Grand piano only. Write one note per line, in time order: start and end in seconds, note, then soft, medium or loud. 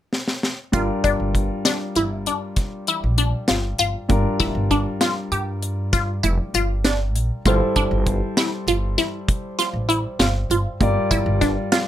0.72 4.05 G3 medium
0.72 4.05 D4 medium
0.72 4.06 F4 medium
0.72 4.06 A#4 medium
4.09 7.41 G3 medium
4.09 7.41 D4 medium
4.09 7.41 F4 medium
4.09 7.41 A#4 medium
7.46 10.77 G3 medium
7.46 10.77 E4 medium
7.46 10.77 A4 medium
7.46 10.78 C5 medium
10.80 11.88 G3 medium
10.80 11.88 F4 medium
10.80 11.88 A#4 medium
10.80 11.88 D5 medium